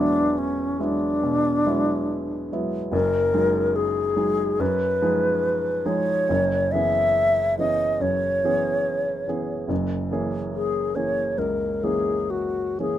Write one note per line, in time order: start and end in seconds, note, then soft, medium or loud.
0.00 2.96 E1 medium
0.00 2.96 E2 medium
0.00 0.77 F#3 medium
0.00 0.77 G#3 medium
0.00 0.77 B3 medium
0.00 0.40 D4 loud
0.00 0.77 E4 medium
0.38 0.84 C#4 medium
0.79 1.20 F#3 soft
0.79 1.20 G#3 medium
0.79 1.20 B3 soft
0.79 2.53 D4 medium
0.79 1.20 E4 medium
1.23 1.65 B2 medium
1.66 2.48 F#3 medium
1.66 2.48 G#3 medium
1.66 2.48 B3 medium
1.66 2.48 E4 medium
2.52 2.90 F#3 medium
2.52 2.90 G#3 soft
2.52 2.91 B3 medium
2.52 2.90 E4 medium
2.92 3.33 F#1 medium
2.92 3.33 F#2 medium
2.92 3.77 A#4 loud
3.33 4.13 F#3 medium
3.33 4.14 G#3 medium
3.33 4.14 D#4 medium
3.33 4.14 G#4 medium
3.76 4.62 G#4 loud
4.16 4.55 F#3 soft
4.16 4.55 G#3 medium
4.16 4.55 D#4 medium
4.16 4.56 G#4 medium
4.59 5.00 F#2 medium
4.59 5.88 B4 loud
5.02 5.82 F3 medium
5.02 5.82 G#3 medium
5.02 5.83 D#4 medium
5.02 5.83 G#4 medium
5.85 6.25 F3 medium
5.85 6.25 G#3 medium
5.85 6.25 D#4 medium
5.85 6.25 G#4 medium
5.85 6.73 C#5 loud
6.29 6.70 F#1 medium
6.29 6.71 F#2 medium
6.72 7.54 E3 medium
6.72 7.54 B3 medium
6.72 7.55 C#4 medium
6.72 7.55 G#4 medium
6.72 7.57 E5 loud
7.58 7.96 E3 medium
7.58 7.96 B3 soft
7.58 7.97 C#4 medium
7.58 7.97 G#4 soft
7.58 8.03 D#5 loud
8.00 8.40 F#2 medium
8.00 9.71 C#5 loud
8.44 9.25 E3 medium
8.44 9.25 B3 medium
8.44 9.25 C#4 medium
8.44 9.26 G#4 medium
9.28 9.66 E3 soft
9.28 9.67 B3 medium
9.28 9.67 C#4 soft
9.28 9.67 G#4 medium
9.68 10.09 F#1 medium
9.68 10.10 F#2 medium
10.11 10.91 E3 medium
10.11 10.91 A#3 soft
10.11 10.92 C#4 medium
10.11 10.92 G#4 medium
10.54 10.97 G#4 medium
10.95 11.35 E3 soft
10.95 11.35 A#3 soft
10.95 11.35 C#4 soft
10.95 11.35 G#4 medium
10.95 11.40 C#5 medium
11.38 11.82 C#2 medium
11.38 11.85 A#4 medium
11.83 12.74 E3 soft
11.83 12.75 A#3 medium
11.83 12.75 C#4 soft
11.83 12.32 G#4 medium
11.83 12.75 G#4 medium
12.30 12.79 F#4 medium
12.79 12.98 E3 soft
12.79 12.98 A#3 soft
12.79 12.98 C#4 soft
12.79 12.98 G#4 soft
12.79 12.98 G#4 medium